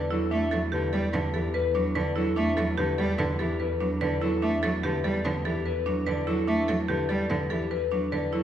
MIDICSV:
0, 0, Header, 1, 5, 480
1, 0, Start_track
1, 0, Key_signature, 1, "minor"
1, 0, Tempo, 410959
1, 366, Time_signature, 5, 2, 24, 8
1, 9846, End_track
2, 0, Start_track
2, 0, Title_t, "Clean electric guitar"
2, 0, Program_c, 0, 27
2, 0, Note_on_c, 0, 74, 73
2, 128, Note_on_c, 0, 69, 89
2, 198, Note_off_c, 0, 74, 0
2, 364, Note_on_c, 0, 76, 87
2, 439, Note_off_c, 0, 69, 0
2, 677, Note_off_c, 0, 76, 0
2, 851, Note_on_c, 0, 71, 67
2, 1089, Note_on_c, 0, 74, 98
2, 1160, Note_off_c, 0, 71, 0
2, 1399, Note_off_c, 0, 74, 0
2, 1567, Note_on_c, 0, 67, 76
2, 1805, Note_on_c, 0, 71, 100
2, 1878, Note_off_c, 0, 67, 0
2, 2118, Note_off_c, 0, 71, 0
2, 2285, Note_on_c, 0, 74, 80
2, 2527, Note_on_c, 0, 69, 102
2, 2598, Note_off_c, 0, 74, 0
2, 2769, Note_on_c, 0, 76, 92
2, 2838, Note_off_c, 0, 69, 0
2, 3079, Note_off_c, 0, 76, 0
2, 3244, Note_on_c, 0, 71, 77
2, 3482, Note_on_c, 0, 74, 89
2, 3557, Note_off_c, 0, 71, 0
2, 3797, Note_off_c, 0, 74, 0
2, 3963, Note_on_c, 0, 67, 79
2, 4209, Note_on_c, 0, 71, 97
2, 4277, Note_off_c, 0, 67, 0
2, 4519, Note_off_c, 0, 71, 0
2, 4690, Note_on_c, 0, 74, 83
2, 4929, Note_on_c, 0, 69, 106
2, 5000, Note_off_c, 0, 74, 0
2, 5171, Note_on_c, 0, 76, 90
2, 5239, Note_off_c, 0, 69, 0
2, 5480, Note_off_c, 0, 76, 0
2, 5651, Note_on_c, 0, 71, 67
2, 5886, Note_on_c, 0, 74, 96
2, 5960, Note_off_c, 0, 71, 0
2, 6198, Note_off_c, 0, 74, 0
2, 6368, Note_on_c, 0, 67, 87
2, 6613, Note_on_c, 0, 71, 99
2, 6679, Note_off_c, 0, 67, 0
2, 6921, Note_off_c, 0, 71, 0
2, 7092, Note_on_c, 0, 74, 79
2, 7323, Note_on_c, 0, 69, 102
2, 7400, Note_off_c, 0, 74, 0
2, 7565, Note_on_c, 0, 76, 87
2, 7637, Note_off_c, 0, 69, 0
2, 7878, Note_off_c, 0, 76, 0
2, 8046, Note_on_c, 0, 71, 66
2, 8284, Note_on_c, 0, 74, 105
2, 8358, Note_off_c, 0, 71, 0
2, 8597, Note_off_c, 0, 74, 0
2, 8765, Note_on_c, 0, 67, 77
2, 9004, Note_on_c, 0, 71, 106
2, 9077, Note_off_c, 0, 67, 0
2, 9317, Note_off_c, 0, 71, 0
2, 9485, Note_on_c, 0, 74, 75
2, 9717, Note_on_c, 0, 69, 93
2, 9797, Note_off_c, 0, 74, 0
2, 9846, Note_off_c, 0, 69, 0
2, 9846, End_track
3, 0, Start_track
3, 0, Title_t, "Marimba"
3, 0, Program_c, 1, 12
3, 0, Note_on_c, 1, 71, 88
3, 123, Note_on_c, 1, 64, 85
3, 197, Note_off_c, 1, 71, 0
3, 363, Note_on_c, 1, 62, 69
3, 437, Note_off_c, 1, 64, 0
3, 600, Note_on_c, 1, 69, 101
3, 677, Note_off_c, 1, 62, 0
3, 840, Note_on_c, 1, 67, 90
3, 916, Note_off_c, 1, 69, 0
3, 1084, Note_on_c, 1, 69, 83
3, 1156, Note_off_c, 1, 67, 0
3, 1322, Note_on_c, 1, 71, 70
3, 1397, Note_off_c, 1, 69, 0
3, 1563, Note_on_c, 1, 69, 90
3, 1637, Note_off_c, 1, 71, 0
3, 1802, Note_on_c, 1, 71, 76
3, 1877, Note_off_c, 1, 69, 0
3, 2042, Note_on_c, 1, 62, 76
3, 2117, Note_off_c, 1, 71, 0
3, 2283, Note_on_c, 1, 71, 88
3, 2357, Note_off_c, 1, 62, 0
3, 2519, Note_on_c, 1, 64, 84
3, 2597, Note_off_c, 1, 71, 0
3, 2759, Note_on_c, 1, 62, 80
3, 2835, Note_off_c, 1, 64, 0
3, 3000, Note_on_c, 1, 69, 107
3, 3075, Note_off_c, 1, 62, 0
3, 3242, Note_on_c, 1, 67, 100
3, 3316, Note_off_c, 1, 69, 0
3, 3484, Note_on_c, 1, 69, 85
3, 3557, Note_off_c, 1, 67, 0
3, 3723, Note_on_c, 1, 71, 75
3, 3797, Note_off_c, 1, 69, 0
3, 3961, Note_on_c, 1, 69, 93
3, 4037, Note_off_c, 1, 71, 0
3, 4202, Note_on_c, 1, 71, 73
3, 4276, Note_off_c, 1, 69, 0
3, 4445, Note_on_c, 1, 62, 79
3, 4517, Note_off_c, 1, 71, 0
3, 4686, Note_on_c, 1, 71, 104
3, 4757, Note_off_c, 1, 62, 0
3, 4923, Note_on_c, 1, 64, 76
3, 4998, Note_off_c, 1, 71, 0
3, 5165, Note_on_c, 1, 62, 74
3, 5237, Note_off_c, 1, 64, 0
3, 5405, Note_on_c, 1, 69, 108
3, 5478, Note_off_c, 1, 62, 0
3, 5648, Note_on_c, 1, 67, 98
3, 5718, Note_off_c, 1, 69, 0
3, 5890, Note_on_c, 1, 69, 85
3, 5959, Note_off_c, 1, 67, 0
3, 6130, Note_on_c, 1, 71, 78
3, 6199, Note_off_c, 1, 69, 0
3, 6369, Note_on_c, 1, 69, 102
3, 6439, Note_off_c, 1, 71, 0
3, 6605, Note_on_c, 1, 71, 71
3, 6679, Note_off_c, 1, 69, 0
3, 6844, Note_on_c, 1, 62, 85
3, 6918, Note_off_c, 1, 71, 0
3, 7084, Note_on_c, 1, 71, 90
3, 7157, Note_off_c, 1, 62, 0
3, 7325, Note_on_c, 1, 64, 80
3, 7397, Note_off_c, 1, 71, 0
3, 7564, Note_on_c, 1, 62, 78
3, 7638, Note_off_c, 1, 64, 0
3, 7804, Note_on_c, 1, 69, 99
3, 7877, Note_off_c, 1, 62, 0
3, 8041, Note_on_c, 1, 67, 91
3, 8117, Note_off_c, 1, 69, 0
3, 8281, Note_on_c, 1, 69, 82
3, 8356, Note_off_c, 1, 67, 0
3, 8522, Note_on_c, 1, 71, 73
3, 8596, Note_off_c, 1, 69, 0
3, 8763, Note_on_c, 1, 69, 90
3, 8837, Note_off_c, 1, 71, 0
3, 9006, Note_on_c, 1, 71, 72
3, 9077, Note_off_c, 1, 69, 0
3, 9245, Note_on_c, 1, 62, 78
3, 9318, Note_off_c, 1, 71, 0
3, 9487, Note_on_c, 1, 71, 90
3, 9558, Note_off_c, 1, 62, 0
3, 9726, Note_on_c, 1, 64, 78
3, 9798, Note_off_c, 1, 71, 0
3, 9846, Note_off_c, 1, 64, 0
3, 9846, End_track
4, 0, Start_track
4, 0, Title_t, "Cello"
4, 0, Program_c, 2, 42
4, 127, Note_on_c, 2, 54, 78
4, 306, Note_off_c, 2, 54, 0
4, 369, Note_on_c, 2, 57, 99
4, 548, Note_off_c, 2, 57, 0
4, 611, Note_on_c, 2, 54, 75
4, 789, Note_off_c, 2, 54, 0
4, 848, Note_on_c, 2, 50, 88
4, 1027, Note_off_c, 2, 50, 0
4, 1086, Note_on_c, 2, 55, 103
4, 1266, Note_off_c, 2, 55, 0
4, 1326, Note_on_c, 2, 50, 73
4, 1506, Note_off_c, 2, 50, 0
4, 1566, Note_on_c, 2, 52, 74
4, 1746, Note_off_c, 2, 52, 0
4, 2042, Note_on_c, 2, 54, 85
4, 2224, Note_off_c, 2, 54, 0
4, 2283, Note_on_c, 2, 50, 81
4, 2464, Note_off_c, 2, 50, 0
4, 2523, Note_on_c, 2, 54, 90
4, 2704, Note_off_c, 2, 54, 0
4, 2761, Note_on_c, 2, 57, 105
4, 2943, Note_off_c, 2, 57, 0
4, 3006, Note_on_c, 2, 54, 79
4, 3186, Note_off_c, 2, 54, 0
4, 3245, Note_on_c, 2, 50, 83
4, 3425, Note_off_c, 2, 50, 0
4, 3485, Note_on_c, 2, 55, 106
4, 3665, Note_off_c, 2, 55, 0
4, 3721, Note_on_c, 2, 50, 77
4, 3903, Note_off_c, 2, 50, 0
4, 3966, Note_on_c, 2, 52, 82
4, 4146, Note_off_c, 2, 52, 0
4, 4445, Note_on_c, 2, 54, 78
4, 4625, Note_off_c, 2, 54, 0
4, 4684, Note_on_c, 2, 50, 83
4, 4865, Note_off_c, 2, 50, 0
4, 4924, Note_on_c, 2, 54, 87
4, 5105, Note_off_c, 2, 54, 0
4, 5166, Note_on_c, 2, 57, 97
4, 5346, Note_off_c, 2, 57, 0
4, 5409, Note_on_c, 2, 54, 85
4, 5588, Note_off_c, 2, 54, 0
4, 5646, Note_on_c, 2, 50, 84
4, 5826, Note_off_c, 2, 50, 0
4, 5889, Note_on_c, 2, 55, 101
4, 6068, Note_off_c, 2, 55, 0
4, 6128, Note_on_c, 2, 50, 75
4, 6308, Note_off_c, 2, 50, 0
4, 6367, Note_on_c, 2, 52, 87
4, 6547, Note_off_c, 2, 52, 0
4, 6847, Note_on_c, 2, 54, 80
4, 7027, Note_off_c, 2, 54, 0
4, 7084, Note_on_c, 2, 50, 79
4, 7265, Note_off_c, 2, 50, 0
4, 7326, Note_on_c, 2, 54, 92
4, 7506, Note_off_c, 2, 54, 0
4, 7565, Note_on_c, 2, 57, 102
4, 7746, Note_off_c, 2, 57, 0
4, 7806, Note_on_c, 2, 54, 75
4, 7986, Note_off_c, 2, 54, 0
4, 8046, Note_on_c, 2, 50, 79
4, 8226, Note_off_c, 2, 50, 0
4, 8286, Note_on_c, 2, 55, 103
4, 8466, Note_off_c, 2, 55, 0
4, 8527, Note_on_c, 2, 50, 73
4, 8706, Note_off_c, 2, 50, 0
4, 8767, Note_on_c, 2, 52, 78
4, 8946, Note_off_c, 2, 52, 0
4, 9244, Note_on_c, 2, 54, 81
4, 9425, Note_off_c, 2, 54, 0
4, 9486, Note_on_c, 2, 50, 71
4, 9666, Note_off_c, 2, 50, 0
4, 9724, Note_on_c, 2, 54, 80
4, 9846, Note_off_c, 2, 54, 0
4, 9846, End_track
5, 0, Start_track
5, 0, Title_t, "Double bass"
5, 0, Program_c, 3, 43
5, 0, Note_on_c, 3, 40, 62
5, 9846, Note_off_c, 3, 40, 0
5, 9846, End_track
0, 0, End_of_file